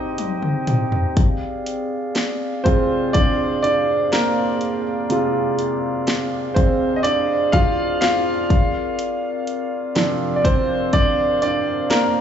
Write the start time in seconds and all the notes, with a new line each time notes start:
Already playing: C4 D#4 G4 C5 D#5 G5
0.18 closed hi-hat, high tom
0.42 mid tom
0.67 closed hi-hat, mid tom
0.92 floor tom
1.16 C4 G#4 D5 F5, kick, closed hi-hat
1.66 closed hi-hat
2.15 snare, closed hi-hat
2.64 C3 G#3 C4 F4 C5, kick, closed hi-hat
3.13 D4 D5, kick, closed hi-hat
3.63 D4 D5, closed hi-hat
4.12 A#3 A#4, snare, closed hi-hat
4.61 closed hi-hat
5.09 C3 G#3 F4, closed hi-hat
5.59 closed hi-hat
6.07 snare, closed hi-hat
6.54 C4 C5, kick, closed hi-hat
6.96 D#5
7.03 D4 D5, closed hi-hat
7.52 F4 F5, kick, closed hi-hat
8.01 F4 F5, snare, closed hi-hat
8.50 A#4 D5, kick, closed hi-hat
8.99 closed hi-hat
9.47 closed hi-hat
9.96 C3 F3 D4, snare, closed hi-hat
10.36 D5
10.44 C4 C5, kick, closed hi-hat
10.93 D4 D5, kick, closed hi-hat
11.42 D4 D5, closed hi-hat
11.90 A#3 A#4, snare, closed hi-hat